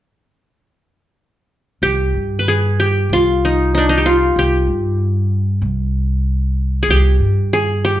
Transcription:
1.82 upright bass C2, qanun G4
2.14 upright bass G2
2.39 qanun B4
2.48 qanun G#4
2.80 qanun G4
3.09 upright bass C2, qanun F4
3.45 qanun D#4
3.75 qanun D4 D#4
3.89 qanun D#4
3.98 qanun G4
4.06 qanun F4
4.36 upright bass C2, qanun G4
4.67 upright bass G2
5.62 upright bass C2
6.83 qanun G#4
6.88 upright bass C2, qanun G4
7.20 upright bass G2
7.53 qanun G#4
7.85 qanun G4

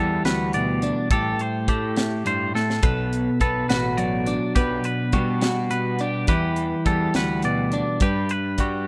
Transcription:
Already playing: picked electric bass E2, clean electric guitar E3 G3 G4 A4
0.24 picked electric bass D2, clean electric guitar F#4 B4, snare, closed hi-hat
0.53 clean electric guitar B2 D5, closed hi-hat
0.82 clean electric guitar D4, closed hi-hat
1.10 picked electric bass A1, clean electric guitar A2 G4 A4, kick, closed hi-hat
1.39 clean electric guitar C5, closed hi-hat
1.68 picked electric bass A2, clean electric guitar A3 G4, kick, closed hi-hat
1.97 snare, closed hi-hat
2.26 clean electric guitar G2 C5, closed hi-hat
2.55 clean electric guitar A2 A4, snare
2.70 snare
2.83 picked electric bass B1, clean electric guitar B2 A4 B4, kick, closed hi-hat
3.13 closed hi-hat
3.41 picked electric bass B1, clean electric guitar B3 A4, kick, closed hi-hat
3.69 picked electric bass A1, clean electric guitar F#4 B4, snare, closed hi-hat
3.97 clean electric guitar F#3 D5, closed hi-hat
4.26 clean electric guitar D4, closed hi-hat
4.55 picked electric bass B1, clean electric guitar B2 G4 B4, kick, closed hi-hat
4.84 clean electric guitar B4, closed hi-hat
5.12 picked electric bass B2, clean electric guitar G3 F#4, kick, closed hi-hat
5.41 clean electric guitar F#4, snare, closed hi-hat
5.71 clean electric guitar B2 B4, closed hi-hat
5.99 clean electric guitar D4 G4, closed hi-hat
6.27 picked electric bass E2, clean electric guitar E3 G4 B4, kick, closed hi-hat
6.56 closed hi-hat
6.86 picked electric bass E2, clean electric guitar G3 A4, kick, closed hi-hat
7.14 picked electric bass D2, clean electric guitar F#4 B4, snare, closed hi-hat
7.42 clean electric guitar B2 D5, closed hi-hat
7.72 clean electric guitar D4, closed hi-hat
8.00 picked electric bass G2, clean electric guitar G2 G4 B4, kick, closed hi-hat
8.29 clean electric guitar B4, closed hi-hat
8.58 picked electric bass G3, clean electric guitar G3 F#4, kick, closed hi-hat

